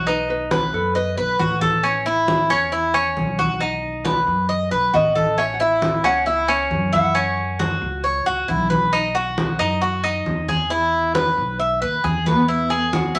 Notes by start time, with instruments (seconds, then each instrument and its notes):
Already playing: upright bass B1
0.06 cuban tres D#4, nylon-string guitar B4, high conga
0.29 nylon-string guitar B4, high conga
0.51 cuban tres B4, high conga
0.73 upright bass F#2, nylon-string guitar A4
0.95 nylon-string guitar B4, cuban tres D#5, high conga
1.17 upright bass B1, cuban tres B4, nylon-string guitar B4, high conga
1.39 upright bass A1, cuban tres F#4, high conga
1.61 cuban tres A4, high conga
1.84 cuban tres C#4, high conga
2.06 cuban tres E4, high conga
2.28 high conga
2.50 upright bass E2, cuban tres C#4, high conga
2.72 cuban tres E4, high conga
2.94 cuban tres C#4, high conga
3.17 upright bass B1, high conga
3.39 cuban tres F#4, high conga
3.61 cuban tres D#4, high conga
3.83 high conga
4.05 cuban tres B4, high conga
4.27 upright bass F#2
4.49 cuban tres D#5, high conga
4.71 upright bass B1, cuban tres B4, high conga
4.93 upright bass A1, cuban tres F#4, nylon-string guitar D#5, high conga
5.15 cuban tres A4, high conga
5.38 cuban tres C#4, nylon-string guitar E5, high conga
5.54 nylon-string guitar F#5
5.60 cuban tres E4, nylon-string guitar E5, high conga
5.82 high conga
6.04 upright bass C#2, cuban tres C#4, nylon-string guitar F#5, high conga
6.26 cuban tres E4, nylon-string guitar E5, high conga
6.48 cuban tres C#4, nylon-string guitar C#5, high conga
6.71 upright bass F#2, high conga
6.93 cuban tres E4, nylon-string guitar F#5, high conga
7.15 cuban tres C#4, high conga
7.38 high conga
7.59 cuban tres F#4, high conga
7.81 upright bass C#2
8.04 cuban tres C#5, high conga
8.26 upright bass C#2, cuban tres F#4, high conga
8.48 upright bass B1, cuban tres E4, high conga
8.70 cuban tres B4, high conga
8.93 cuban tres D#4, high conga
9.15 cuban tres F#4, high conga
9.38 high conga
9.59 upright bass F#2, cuban tres D#4, high conga
9.81 cuban tres F#4, high conga
10.04 cuban tres D#4, high conga
10.26 upright bass E2, high conga
10.48 cuban tres G#4, high conga
10.70 cuban tres E4, high conga
10.93 high conga
11.15 cuban tres B4, high conga
11.37 upright bass B1
11.60 cuban tres E5, high conga
11.82 upright bass D#2, cuban tres B4, high conga
12.04 upright bass E2, cuban tres G#4, high conga
12.26 nylon-string guitar B3, cuban tres B4, high conga
12.48 cuban tres E4, high conga
12.70 cuban tres G#4, high conga
12.79 nylon-string guitar A3
12.93 nylon-string guitar F#4, high conga
13.15 upright bass B1, cuban tres E4, high conga